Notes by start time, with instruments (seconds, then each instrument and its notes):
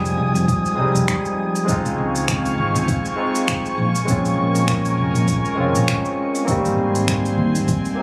Already playing: fingered electric bass F1, analog synth pad F3 G#5 D#6, tine electric piano G3 G#3 C4 D#4, synth texture G#3 G#5
0.05 open hi-hat, shaker
0.17 fingered electric bass C2
0.35 fingered electric bass F1, open hi-hat, shaker
0.48 kick, open hi-hat, shaker
0.66 shaker
0.75 fingered electric bass C2, tine electric piano G#3 C4 D#4
0.81 tine electric piano G3
0.95 fingered electric bass F1, open hi-hat, shaker
1.08 finger snap, kick, open hi-hat, shaker
1.26 shaker
1.55 open hi-hat, shaker
1.65 tine electric piano G#3 C4 D#4, analog synth pad C4 F5 C#6, kick, open hi-hat, shaker
1.71 tine electric piano F4
1.85 fingered electric bass C#2, open hi-hat, shaker
1.98 fingered electric bass C#2
2.15 open hi-hat, shaker
2.28 finger snap, kick, open hi-hat, shaker
2.45 open hi-hat, shaker
2.58 fingered electric bass G#1
2.75 fingered electric bass C#2, open hi-hat, shaker
2.88 kick, open hi-hat, shaker
3.05 shaker
3.16 tine electric piano G#3 C4 D#4 F4
3.35 open hi-hat, shaker
3.48 finger snap, kick, open hi-hat, shaker
3.66 shaker
3.78 fingered electric bass A#1, analog synth pad A#4 G#5
3.95 open hi-hat, shaker
4.05 fingered electric bass A#1, tine electric piano G#3 C4 C#4, kick, open hi-hat, shaker
4.11 tine electric piano F4
4.25 open hi-hat, shaker
4.38 fingered electric bass A#1
4.55 open hi-hat, shaker
4.68 finger snap, kick, open hi-hat, shaker
4.85 open hi-hat, shaker
4.98 fingered electric bass F1
5.15 fingered electric bass A#1, open hi-hat, shaker
5.28 kick, open hi-hat, shaker
5.45 shaker
5.55 fingered electric bass F1, tine electric piano G#3 C4 C#4
5.60 tine electric piano F4
5.75 fingered electric bass A#1, open hi-hat, shaker
5.88 finger snap, kick, open hi-hat, shaker
6.05 shaker
6.35 open hi-hat, shaker
6.45 tine electric piano A#3 C4 D#4, analog synth pad C4 G#5 C6, kick, open hi-hat, shaker
6.51 tine electric piano G3
6.65 fingered electric bass G#1, open hi-hat, shaker
6.78 fingered electric bass G#1
6.95 open hi-hat, shaker
7.08 finger snap, kick, open hi-hat, shaker
7.25 open hi-hat, shaker
7.38 fingered electric bass D#2
7.55 fingered electric bass G#1, open hi-hat, shaker
7.68 kick, open hi-hat, shaker
7.85 open hi-hat, shaker
7.95 tine electric piano A#3 C4 D#4